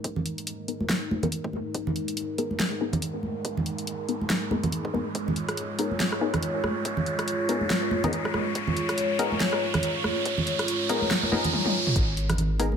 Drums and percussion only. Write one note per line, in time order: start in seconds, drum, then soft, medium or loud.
0.04 kick loud
0.04 closed hi-hat medium
0.16 low conga medium
0.26 closed hi-hat medium
0.38 closed hi-hat medium
0.47 closed hi-hat medium
0.68 closed hi-hat medium
0.81 high conga medium
0.89 snare loud
0.89 closed hi-hat medium
1.11 high conga medium
1.23 kick medium
1.23 closed hi-hat soft
1.23 low conga loud
1.32 closed hi-hat medium
1.44 kick loud
1.53 high conga medium
1.75 kick loud
1.75 closed hi-hat medium
1.87 low conga medium
1.96 closed hi-hat medium
2.08 closed hi-hat medium
2.17 closed hi-hat medium
2.38 closed hi-hat soft
2.51 high conga medium
2.60 snare loud
2.60 closed hi-hat medium
2.93 kick medium
2.93 closed hi-hat medium
2.93 low conga medium
3.02 closed hi-hat medium
3.23 high conga medium
3.45 kick loud
3.45 closed hi-hat medium
3.57 low conga medium
3.66 closed hi-hat medium
3.78 closed hi-hat medium
3.87 closed hi-hat medium
4.09 closed hi-hat soft
4.21 high conga medium
4.30 snare loud
4.30 closed hi-hat medium
4.51 high conga loud
4.63 kick medium
4.63 closed hi-hat soft
4.63 low conga medium
4.72 closed hi-hat medium
4.85 kick loud
4.94 high conga medium
5.15 kick loud
5.15 closed hi-hat medium
5.28 low conga medium
5.36 closed hi-hat soft
5.49 cross-stick medium
5.49 closed hi-hat medium
5.57 closed hi-hat medium
5.79 open hi-hat medium
5.91 high conga medium
6.00 snare loud
6.00 closed hi-hat medium
6.12 cross-stick medium
6.34 kick medium
6.34 cross-stick medium
6.34 closed hi-hat soft
6.34 low conga medium
6.43 closed hi-hat medium
6.64 cross-stick medium
6.64 high conga medium
6.85 kick loud
6.85 closed hi-hat medium
6.97 low conga medium
7.06 closed hi-hat soft
7.19 cross-stick medium
7.19 closed hi-hat medium
7.28 closed hi-hat medium
7.49 open hi-hat medium
7.61 high conga medium
7.70 snare loud
7.70 closed hi-hat medium
7.91 high conga medium
8.04 kick medium
8.04 closed hi-hat medium
8.04 low conga medium
8.13 closed hi-hat medium
8.25 kick loud
8.25 cross-stick medium
8.34 cross-stick medium
8.34 high conga medium
8.55 kick loud
8.55 closed hi-hat medium
8.67 low conga medium
8.77 closed hi-hat medium
8.89 cross-stick medium
8.89 closed hi-hat medium
8.98 closed hi-hat medium
9.19 open hi-hat medium
9.32 high conga medium
9.40 snare loud
9.40 closed hi-hat medium
9.53 cross-stick medium
9.74 kick medium
9.74 cross-stick medium
9.74 closed hi-hat medium
9.74 low conga medium
9.83 closed hi-hat medium
10.04 cross-stick medium
10.04 high conga medium
10.25 kick loud
10.25 closed hi-hat medium
10.38 low conga medium
10.47 closed hi-hat medium
10.59 cross-stick medium
10.59 closed hi-hat medium
10.68 closed hi-hat medium
10.89 open hi-hat medium
11.02 high conga medium
11.11 snare loud
11.11 closed hi-hat medium
11.23 high conga medium
11.32 high conga medium
11.44 kick medium
11.44 closed hi-hat medium
11.44 low conga medium
11.53 high tom medium
11.66 high tom medium
11.87 mid tom medium
11.96 kick loud
11.96 closed hi-hat medium
12.17 closed hi-hat medium
12.30 cross-stick medium
12.30 closed hi-hat medium
12.30 low conga medium
12.38 closed hi-hat medium
12.38 low conga medium
12.60 open hi-hat loud
12.72 high conga medium